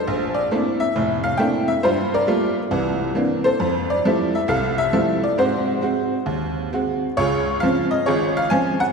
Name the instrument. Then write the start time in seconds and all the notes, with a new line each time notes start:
honky-tonk piano
Already playing: A4 C5
0.07 A#1
0.34 D5
0.51 A3 A#3 C4 D4 E4
0.80 E5
0.96 F1 A2
1.24 F5
1.37 A3 A#3 C4 D4 E4 G5
1.68 E5
1.83 G2 G3 F4 C5
2.14 A#4 D5
2.27 G3 A3 A#3 F4
2.71 C2 E3
3.15 E3 A#3 C4 D4
3.44 A4 C5
3.60 F2
3.90 D5
4.05 F3 G3 A3 E4
4.35 E5
4.48 C2 A4 F5
4.78 E5
4.93 F3 G3 A3 E4
5.24 D5
5.38 G#2 C4 F#4 C5
5.81 G#3 C4 F#4
6.26 D#2
6.73 G#3 C4 F#4
7.17 C#2 F4 G#4 C#5
7.60 F3 C4 C#4 F5
7.91 D#5
8.06 G#1 F4 G#4 C#5
8.37 F5
8.50 F3 C4 C#4 G#5
8.80 F#5